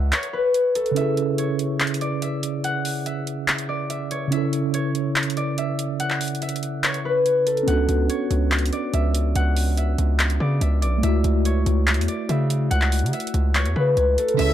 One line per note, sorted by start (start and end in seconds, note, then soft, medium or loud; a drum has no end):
0.00 0.12 C#2 loud
0.00 0.19 D5 medium
0.00 0.96 E5 medium
0.00 0.89 F#5 loud
0.12 1.38 C#5 loud
0.12 clap loud
0.12 closed hi-hat medium
0.23 closed hi-hat medium
0.33 2.38 B4 medium
0.54 closed hi-hat medium
0.75 2.95 A4 medium
0.75 closed hi-hat medium
0.86 closed hi-hat soft
0.91 4.26 C#3 medium
0.91 4.27 C#4 medium
0.96 4.29 E4 medium
0.96 2.22 E5 medium
0.96 closed hi-hat medium
1.01 4.30 G#4 medium
1.17 closed hi-hat medium
1.38 2.07 C#5 medium
1.38 closed hi-hat medium
1.59 closed hi-hat medium
1.80 clap loud
1.80 closed hi-hat soft
1.87 closed hi-hat medium
1.94 closed hi-hat medium
2.01 3.68 D5 medium
2.01 closed hi-hat medium
2.22 3.06 E5 medium
2.22 closed hi-hat medium
2.43 closed hi-hat medium
2.64 4.25 F#5 loud
2.64 closed hi-hat medium
2.85 open hi-hat medium
3.06 3.89 E5 medium
3.06 closed hi-hat medium
3.27 closed hi-hat medium
3.48 clap loud
3.48 closed hi-hat soft
3.58 closed hi-hat medium
3.69 4.17 D5 medium
3.90 4.32 E5 medium
3.90 closed hi-hat medium
4.11 4.74 C#5 medium
4.11 closed hi-hat medium
4.28 7.61 C#3 medium
4.28 7.62 C#4 medium
4.32 7.65 E4 medium
4.32 5.58 E5 loud
4.32 closed hi-hat medium
4.37 7.66 A4 medium
4.53 closed hi-hat medium
4.74 5.43 C#5 medium
4.74 closed hi-hat medium
4.95 closed hi-hat medium
5.16 clap loud
5.16 closed hi-hat soft
5.23 closed hi-hat medium
5.30 closed hi-hat medium
5.37 6.90 D5 medium
5.37 closed hi-hat medium
5.58 6.42 E5 medium
5.58 closed hi-hat medium
5.79 closed hi-hat medium
6.00 7.61 F#5 loud
6.00 closed hi-hat medium
6.10 clap medium
6.21 closed hi-hat soft
6.21 open hi-hat medium
6.28 closed hi-hat medium
6.35 closed hi-hat medium
6.42 8.15 E5 medium
6.42 closed hi-hat medium
6.49 closed hi-hat medium
6.56 closed hi-hat medium
6.63 closed hi-hat medium
6.84 8.09 C#5 loud
6.84 clap loud
6.84 closed hi-hat medium
6.94 closed hi-hat medium
7.05 9.10 B4 medium
7.26 closed hi-hat medium
7.46 9.66 A4 medium
7.46 closed hi-hat medium
7.57 closed hi-hat soft
7.63 10.99 B3 medium
7.63 10.97 C#4 medium
7.68 7.88 C#2 loud
7.68 11.00 D4 medium
7.68 9.29 F#5 loud
7.68 closed hi-hat medium
7.73 11.02 F#4 medium
7.89 8.09 C#2 loud
7.89 closed hi-hat medium
8.10 8.79 C#5 medium
8.10 closed hi-hat medium
8.31 8.71 C#2 loud
8.31 closed hi-hat medium
8.52 clap loud
8.52 closed hi-hat soft
8.59 closed hi-hat medium
8.66 closed hi-hat medium
8.73 10.40 D5 medium
8.73 closed hi-hat medium
8.94 9.34 C#2 loud
8.94 9.77 E5 medium
8.94 closed hi-hat medium
9.15 closed hi-hat medium
9.36 9.96 C#2 loud
9.36 10.97 F#5 loud
9.36 closed hi-hat medium
9.57 open hi-hat medium
9.77 10.61 E5 medium
9.77 closed hi-hat medium
9.98 10.39 C#2 loud
9.98 closed hi-hat medium
10.19 clap loud
10.19 closed hi-hat soft
10.30 closed hi-hat medium
10.40 10.60 C#3 loud
10.40 10.82 D5 medium
10.61 10.84 C#2 loud
10.61 11.03 E5 medium
10.61 closed hi-hat medium
10.82 11.02 B1 loud
10.82 11.52 D5 medium
10.82 closed hi-hat medium
10.98 14.32 A3 medium
11.03 11.23 C#2 loud
11.03 14.35 E4 medium
11.03 12.29 E5 loud
11.03 closed hi-hat medium
11.08 14.37 F#4 medium
11.24 11.65 C#2 loud
11.24 closed hi-hat medium
11.45 12.14 C#5 medium
11.45 closed hi-hat medium
11.66 11.99 C#2 loud
11.66 closed hi-hat medium
11.87 clap loud
11.87 closed hi-hat soft
11.94 12.08 E2 loud
11.94 closed hi-hat medium
12.01 closed hi-hat medium
12.08 13.61 D5 medium
12.08 closed hi-hat medium
12.29 12.69 C#3 loud
12.29 13.13 E5 medium
12.29 closed hi-hat medium
12.50 closed hi-hat medium
12.71 13.04 C#2 loud
12.71 14.31 F#5 loud
12.71 closed hi-hat medium
12.82 clap medium
12.92 closed hi-hat soft
12.92 open hi-hat medium
12.99 13.13 C#3 loud
12.99 closed hi-hat medium
13.06 closed hi-hat medium
13.13 14.38 E5 medium
13.13 closed hi-hat medium
13.20 closed hi-hat medium
13.27 closed hi-hat medium
13.34 13.67 C#2 loud
13.34 closed hi-hat medium
13.55 14.54 C#5 medium
13.55 clap loud
13.55 closed hi-hat medium
13.65 13.75 E2 loud
13.65 closed hi-hat medium
13.76 13.96 C#3 loud
13.76 14.54 B4 medium
13.97 14.17 C#2 loud
13.97 closed hi-hat medium
14.18 14.54 A4 medium
14.18 closed hi-hat medium
14.28 closed hi-hat soft
14.34 14.54 C#3 medium
14.34 14.54 C#4 medium
14.39 14.54 C#2 loud
14.39 14.54 E4 medium
14.39 14.54 G#4 medium
14.39 14.54 C#5 medium
14.39 14.54 E5 medium
14.39 14.54 E5 loud
14.39 closed hi-hat medium
14.39 crash loud
14.44 14.54 G#4 medium